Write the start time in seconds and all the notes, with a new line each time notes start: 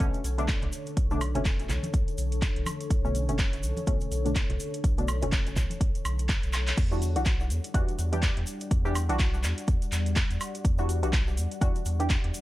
Already playing: D3 A4 C#5
0.00 B1 B2 D3 A3 C#4, kick, closed hi-hat, shaker
0.14 closed hi-hat, shaker
0.24 B1, open hi-hat, shaker
0.38 B2 D3 A3 D4, closed hi-hat, shaker
0.48 kick, clap, closed hi-hat, shaker
0.62 B1, closed hi-hat, low conga
0.72 open hi-hat, shaker
0.86 closed hi-hat, shaker
0.97 B1, kick, closed hi-hat, shaker
1.11 B2 D3 A3 D4, shaker
1.21 open hi-hat, high woodblock, shaker
1.35 F#1 B2 D3 A3 C#4, closed hi-hat, low conga, shaker
1.45 kick, clap, closed hi-hat, high conga, shaker
1.60 closed hi-hat, shaker
1.69 B1, clap, open hi-hat, low conga, shaker
1.83 closed hi-hat, high conga, shaker
1.93 B1, kick, closed hi-hat, shaker
2.08 closed hi-hat, shaker
2.18 B1, open hi-hat, shaker
2.32 closed hi-hat, shaker
2.42 kick, clap, closed hi-hat, shaker
2.56 B1, closed hi-hat
2.66 open hi-hat, high conga, high woodblock, shaker
2.81 closed hi-hat, shaker
2.90 B1, kick, closed hi-hat, shaker
3.04 B2 D3 A3 C#4, shaker
3.15 open hi-hat, shaker
3.29 F#1 B2 D3 A3 C#4, closed hi-hat, shaker
3.38 kick, clap, closed hi-hat, high conga, shaker
3.53 closed hi-hat, shaker
3.63 B1, open hi-hat, shaker
3.77 closed hi-hat, high conga, shaker
3.87 B1 B2 D3 A3 C#4, kick, closed hi-hat, shaker
4.00 closed hi-hat, shaker
4.11 B1, open hi-hat, shaker
4.25 B2 D3 A3 D4, closed hi-hat, shaker
4.35 kick, clap, closed hi-hat, shaker
4.50 B1, closed hi-hat, low conga
4.60 open hi-hat, shaker
4.74 closed hi-hat, shaker
4.84 B1, kick, closed hi-hat, shaker
4.98 B2 D3 A3 D4, closed hi-hat, shaker
5.08 open hi-hat, high woodblock, shaker
5.22 F#1 B2 D3 A3 C#4, closed hi-hat, low conga, shaker
5.32 kick, clap, closed hi-hat, high conga, shaker
5.47 closed hi-hat, shaker
5.56 B1, kick, clap, open hi-hat, low conga, shaker
5.70 closed hi-hat, high conga, shaker
5.81 B1, kick, closed hi-hat, shaker
5.95 closed hi-hat, shaker
6.05 B1, open hi-hat, high woodblock, shaker
6.19 closed hi-hat, shaker
6.29 kick, clap, closed hi-hat, shaker
6.43 B1, closed hi-hat, shaker
6.53 clap, open hi-hat, high woodblock, shaker
6.67 clap, closed hi-hat, shaker
6.77 E2 G3 D5 F#5, kick, closed hi-hat, crash, shaker
6.91 E3 G3 D4 F#4, shaker
7.02 open hi-hat, shaker
7.16 B1 E3 G3 D4 F#4, closed hi-hat, shaker
7.25 kick, clap, closed hi-hat, shaker
7.40 shaker
7.50 E2, open hi-hat, shaker
7.64 closed hi-hat, shaker
7.74 E2 E3 G3 D4 F#4, kick, closed hi-hat, shaker
7.89 closed hi-hat, shaker
7.99 E2, open hi-hat, shaker
8.12 E3 G3 D4 G4, closed hi-hat, shaker
8.23 kick, clap, closed hi-hat, shaker
8.37 E2, closed hi-hat
8.47 open hi-hat, shaker
8.60 closed hi-hat, shaker
8.71 E2, kick, closed hi-hat, shaker
8.85 E3 G3 D4 G4, shaker
8.95 open hi-hat, high woodblock, shaker
9.09 B1 E3 G3 D4 F#4, closed hi-hat, shaker
9.19 kick, clap, closed hi-hat, shaker
9.34 shaker
9.43 E2, clap, open hi-hat, shaker
9.58 closed hi-hat, shaker
9.68 E2, kick, closed hi-hat, shaker
9.82 closed hi-hat, shaker
9.92 E2, clap, open hi-hat, shaker
10.06 closed hi-hat, shaker
10.16 kick, clap, closed hi-hat, shaker
10.30 E2, closed hi-hat, shaker
10.41 open hi-hat, high woodblock, shaker
10.55 closed hi-hat, shaker
10.65 E2, kick, closed hi-hat, shaker
10.78 E3 G3 D4 F#4, shaker
10.89 open hi-hat, shaker
11.03 B1 E3 G3 D4 F#4, closed hi-hat, shaker
11.13 kick, clap, closed hi-hat, shaker
11.27 shaker
11.37 E2, open hi-hat, shaker
11.52 closed hi-hat, shaker
11.61 E2 E3 G3 D4 F#4, kick, closed hi-hat, shaker
11.75 closed hi-hat, shaker
11.86 E2, open hi-hat, shaker
11.99 E3 G3 D4 G4, closed hi-hat, shaker
12.10 kick, clap, closed hi-hat, shaker
12.24 E2, closed hi-hat
12.34 open hi-hat, shaker